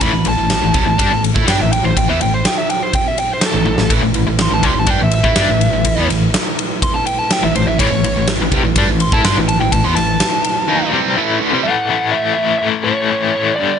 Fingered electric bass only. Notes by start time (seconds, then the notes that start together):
0.01 A1
0.14 A1
0.26 A1
0.38 A1
0.63 A1
0.75 C2
0.87 A1
0.99 G2
1.12 A1
1.36 A2
1.48 G2
1.59 A1
1.84 A1
1.97 A1
2.08 E2
2.21 A1
3.54 A1
3.66 A1
3.78 A1
3.90 A1
4.02 A1
4.15 A1
4.27 A1
4.50 A1
4.63 C2
4.75 A1
4.87 G2
5.00 A1
5.24 A2
5.36 G2
5.48 A1
5.72 A1
5.85 A1
5.97 E2
6.09 A1
7.43 A1
7.55 A1
7.67 A1
7.79 A1
7.92 A1
8.03 A1
8.16 A1
8.39 A1
8.52 C2
8.63 A1
8.76 G2
8.87 A1
9.12 A2
9.23 G2
9.36 A1
9.60 A1
9.72 A1
9.84 E2
9.96 A1